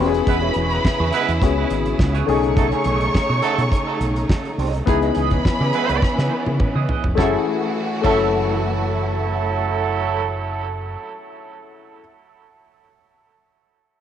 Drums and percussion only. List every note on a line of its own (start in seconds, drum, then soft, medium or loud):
0.14 closed hi-hat medium
0.27 kick loud
0.27 closed hi-hat medium
0.54 closed hi-hat medium
0.70 closed hi-hat soft
0.85 kick loud
0.85 snare loud
1.12 closed hi-hat medium
1.28 closed hi-hat soft
1.42 kick loud
1.42 snare soft
1.42 closed hi-hat medium
1.70 closed hi-hat medium
1.86 closed hi-hat soft
1.99 kick loud
1.99 snare loud
2.15 closed hi-hat soft
2.29 open hi-hat medium
2.44 closed hi-hat medium
2.57 kick loud
2.57 closed hi-hat medium
2.72 closed hi-hat soft
2.84 closed hi-hat medium
3.01 closed hi-hat soft
3.15 kick loud
3.15 snare loud
3.42 closed hi-hat medium
3.59 closed hi-hat medium
3.72 kick loud
3.72 closed hi-hat medium
4.01 closed hi-hat medium
4.16 closed hi-hat soft
4.29 kick loud
4.29 snare loud
4.45 closed hi-hat soft
4.59 open hi-hat medium
4.75 closed hi-hat medium
4.87 kick loud
4.87 closed hi-hat medium
5.02 closed hi-hat soft
5.15 closed hi-hat medium
5.31 kick medium
5.31 closed hi-hat soft
5.45 kick loud
5.45 snare loud
5.73 closed hi-hat medium
5.89 closed hi-hat medium
6.02 kick loud
6.02 snare medium
6.19 snare medium
6.46 high tom medium
6.60 kick loud
6.60 mid tom medium
6.89 floor tom medium
7.04 floor tom loud
7.18 kick loud
7.18 snare medium
8.04 kick loud
8.04 crash medium